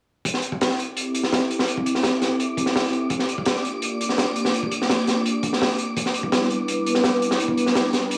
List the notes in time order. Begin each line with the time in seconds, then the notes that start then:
0.25 C4 E4 G4 A4 E5 D6, kick, closed hi-hat
0.34 snare
0.42 closed hi-hat
0.52 kick
0.61 snare, closed hi-hat
0.70 snare
0.79 C4 E4 G4 A4 E5, closed hi-hat
0.97 closed hi-hat
1.15 closed hi-hat
1.23 snare
1.33 snare, closed hi-hat
1.51 closed hi-hat
1.59 snare
1.68 C4 E4 G4 A4 E5, closed hi-hat
1.77 kick
1.86 closed hi-hat
1.95 snare
2.03 snare, closed hi-hat
2.22 snare, closed hi-hat
2.40 closed hi-hat
2.57 C4 E4 G4 A4 E5, kick, closed hi-hat
2.66 snare
2.75 snare, open hi-hat
2.85 snare
2.93 closed hi-hat
3.10 A#3 D4 F4 G4 D5, kick, closed hi-hat
3.19 snare
3.29 closed hi-hat
3.38 kick
3.46 snare, closed hi-hat
3.56 snare
3.65 A#3 D4 F4 G4 D5, closed hi-hat
3.82 closed hi-hat
4.01 closed hi-hat
4.09 snare
4.18 snare, closed hi-hat
4.36 closed hi-hat
4.45 snare
4.54 A#3 D4 F4 G4 D5, closed hi-hat
4.63 kick
4.71 closed hi-hat
4.82 snare
4.90 snare, closed hi-hat
5.07 snare, closed hi-hat
5.26 closed hi-hat
5.43 kick, closed hi-hat
5.53 snare
5.61 snare, open hi-hat
5.70 snare
5.78 closed hi-hat
5.97 G3 B3 D4 E4 B4, kick, closed hi-hat
6.06 snare
6.14 closed hi-hat
6.23 kick
6.32 snare, closed hi-hat
6.41 snare
6.50 G3 B3 D4 E4 B4, closed hi-hat
6.68 closed hi-hat
6.86 closed hi-hat
6.95 snare
7.04 snare, closed hi-hat
7.22 closed hi-hat
7.31 snare
7.40 G3 B3 D4 E4 B4, closed hi-hat
7.48 kick
7.57 closed hi-hat
7.66 snare
7.75 snare, closed hi-hat
7.93 snare, closed hi-hat
8.11 closed hi-hat